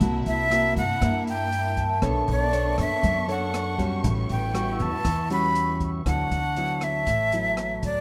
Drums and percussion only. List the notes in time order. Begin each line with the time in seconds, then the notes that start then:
0.01 kick, closed hi-hat
0.26 closed hi-hat
0.51 cross-stick, closed hi-hat
0.76 kick, closed hi-hat
1.01 kick, cross-stick, closed hi-hat
1.27 closed hi-hat
1.52 closed hi-hat
1.77 kick, closed hi-hat
2.02 kick, cross-stick, closed hi-hat
2.27 closed hi-hat
2.53 closed hi-hat
2.78 kick, cross-stick, closed hi-hat
3.03 kick, closed hi-hat
3.29 closed hi-hat
3.54 cross-stick, closed hi-hat
3.79 kick, closed hi-hat
4.04 kick, closed hi-hat
4.29 closed hi-hat
4.55 cross-stick, closed hi-hat
4.79 closed hi-hat
5.05 kick, cross-stick, closed hi-hat
5.30 closed hi-hat
5.55 closed hi-hat
5.80 kick, closed hi-hat
6.06 kick, cross-stick, closed hi-hat
6.31 closed hi-hat
6.56 closed hi-hat
6.81 cross-stick, closed hi-hat
7.07 kick, closed hi-hat
7.32 closed hi-hat
7.57 cross-stick, closed hi-hat
7.83 kick, closed hi-hat